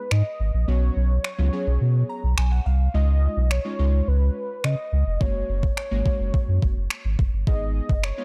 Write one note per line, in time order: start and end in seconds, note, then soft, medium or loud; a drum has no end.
0.00 0.13 B4 medium
0.11 0.22 G#2 medium
0.11 0.70 D#5 loud
0.11 finger snap loud
0.40 0.51 G#1 medium
0.54 0.65 A#1 medium
0.68 0.90 B1 loud
0.68 1.11 F#3 medium
0.68 1.12 B3 medium
0.68 1.12 C#4 medium
0.68 1.12 F#4 medium
0.68 1.24 C#5 loud
0.96 1.19 B1 medium
1.24 2.34 C#5 medium
1.24 finger snap loud
1.38 1.50 C#2 medium
1.38 1.47 F#3 medium
1.38 1.47 B3 medium
1.38 1.47 C#4 medium
1.38 1.48 F4 medium
1.53 2.23 F#3 medium
1.53 2.23 B3 medium
1.53 2.23 C#4 medium
1.53 2.23 G#4 medium
1.67 1.78 B1 medium
1.81 2.03 B2 loud
2.09 2.36 A#5 medium
2.24 2.35 B1 medium
2.38 2.60 B1 medium
2.38 2.51 G#5 medium
2.38 finger snap loud
2.52 2.65 F#5 medium
2.66 2.88 C2 medium
2.66 2.92 F5 medium
2.94 3.28 C#2 medium
2.94 3.38 G#3 medium
2.94 3.38 C#4 medium
2.94 3.38 D#4 medium
2.94 3.38 F4 medium
2.94 3.52 D#5 loud
3.37 3.59 B1 medium
3.51 4.09 C#5 loud
3.51 finger snap loud
3.65 3.74 G#3 medium
3.65 3.74 C#4 medium
3.65 3.74 D#4 medium
3.65 3.74 F4 medium
3.79 4.02 C#2 medium
3.79 4.49 G#3 medium
3.79 4.49 C#4 medium
3.79 4.49 D#4 medium
3.79 4.49 F4 medium
4.08 4.30 C#2 loud
4.08 4.66 B4 loud
4.64 4.75 C#3 loud
4.64 5.22 D#5 loud
4.64 finger snap loud
4.92 5.04 C#2 medium
5.06 5.18 F1 medium
5.20 5.43 F#1 loud
5.20 5.64 G#3 medium
5.20 5.64 A#3 medium
5.20 5.64 C#4 medium
5.20 5.64 F#4 medium
5.20 5.77 C#5 loud
5.20 kick loud
5.49 5.71 F#1 loud
5.63 kick medium
5.77 6.87 C#5 medium
5.77 finger snap loud
5.91 6.03 G#1 medium
5.91 6.00 G#3 medium
5.91 6.00 A#3 medium
5.91 6.00 C#4 medium
5.91 6.00 F#4 medium
6.05 6.75 G#3 medium
6.05 6.75 A#3 medium
6.05 6.75 C#4 medium
6.05 6.75 F#4 medium
6.05 kick medium
6.20 6.31 F#1 medium
6.34 kick medium
6.48 6.59 F#2 loud
6.62 6.74 F#1 medium
6.62 kick medium
6.76 6.88 F#1 medium
6.90 finger snap loud
7.05 7.16 G#1 medium
7.19 7.30 F#1 medium
7.19 kick medium
7.33 7.44 G1 medium
7.47 7.81 G#1 loud
7.47 7.91 G#3 medium
7.47 7.91 B3 medium
7.47 7.91 D#4 medium
7.47 7.91 G#4 medium
7.47 8.05 D#5 loud
7.47 kick loud
7.89 8.12 F#1 medium
7.89 kick medium
8.04 8.24 C#5 loud
8.04 finger snap loud
8.18 8.24 G#3 medium
8.18 8.24 B3 medium
8.18 8.24 D#4 medium
8.18 8.24 F4 medium